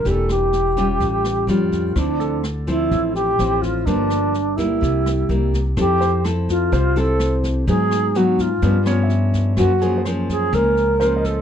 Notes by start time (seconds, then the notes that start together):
0.05 E1 E3 A#3 D4 G4, kick, snare
0.09 A4
0.29 G4, cross-stick, snare
0.53 snare
0.77 G3 C#4 F4, kick, snare
1.00 A1 A2, kick, snare
1.25 cross-stick, snare
1.47 F2 G3 C#4 F4, snare
1.72 kick, snare
1.96 D2 D3 F3 C4 D4 E4, kick, cross-stick, snare
2.20 A4, snare
2.44 cross-stick, snare
2.67 F3 C4 E4, kick, snare
2.91 A1 A2, kick, snare
3.15 G4, snare
3.39 A1 F3 C4 E4, cross-stick, snare
3.61 F4, kick, snare
3.85 G1 G2 F3 A#3 D4, kick, snare
4.10 cross-stick, snare
4.34 snare
4.56 G3 A#3 E4, kick, snare
4.81 C2 C3, kick, snare
5.06 cross-stick, snare
5.29 C2 G3 A#3 E4, snare
5.53 kick, snare
5.77 F2 F3 C4 E4 G4 A4, kick, cross-stick, snare
6.01 C5, snare
6.24 C4 E4 A4, cross-stick, snare
6.49 F4, kick, snare
6.72 C2 C3 C5, kick, snare
6.96 C4 E4 A4, snare
7.20 cross-stick, snare
7.44 kick, snare
7.67 G#2 F#3 B3 D#4 G#4, kick, snare
7.91 cross-stick, snare
8.15 F#3 B3 D#4 F#4, snare
8.39 F4, kick, snare
8.62 G2 F3 B3 C#4, kick, snare
8.86 F3 B3 C#4 C#5, cross-stick, snare
9.03 E5
9.09 snare
9.34 kick, snare
9.57 F#2 F3 A#3 C#4 F#4, kick, cross-stick, snare
9.81 F3 A#3 C#4 G#4, snare
9.98 C5
10.05 F3 A#3 C#4, cross-stick, snare
10.29 G#4, kick, snare
10.53 C#2 C#3 F3 A#3 C#4 A#4, kick, snare
10.77 snare
11.00 F3 A#3 C#4 C5, cross-stick, snare
11.16 D#5
11.24 A4, kick, snare